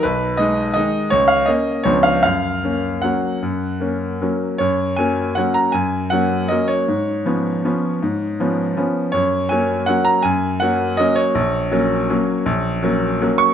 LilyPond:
<<
  \new Staff \with { instrumentName = "Grand piano" } { \time 3/4 \key fis \major \tempo 4 = 160 b'4 dis''4 dis''4 | cis''8 eis''8 dis''4 cis''8 eis''8 | eis''2 fis''4~ | fis''2 r4 |
cis''4 gis''4 fis''8 ais''8 | gis''4 fis''4 dis''8 cis''8~ | cis''2.~ | cis''2. |
cis''4 gis''4 fis''8 ais''8 | gis''4 fis''4 dis''8 cis''8~ | cis''2.~ | cis''2~ cis''8 cis'''8 | }
  \new Staff \with { instrumentName = "Grand piano" } { \time 3/4 \key fis \major b,,4 <gis dis'>4 <dis gis dis'>4 | cis,4 <ais cis'>4 <cis, eis b d'>4 | fis,4 <ais cis'>4 <fis ais cis'>4 | fis,4 <ais cis'>4 <fis ais cis'>4 |
fis,4 <fis ais cis'>4 <fis ais cis'>4 | fis,4 <fis ais cis'>4 <fis ais cis'>4 | gis,4 <eis b cis'>4 <eis b cis'>4 | gis,4 <eis b cis'>4 <eis b cis'>4 |
fis,4 <fis ais cis'>4 <fis ais cis'>4 | fis,4 <fis ais cis'>4 <fis ais cis'>4 | ais,,4 <fis ais cis'>4 <fis ais cis'>4 | ais,,4 <fis ais cis'>4 <fis ais cis'>4 | }
>>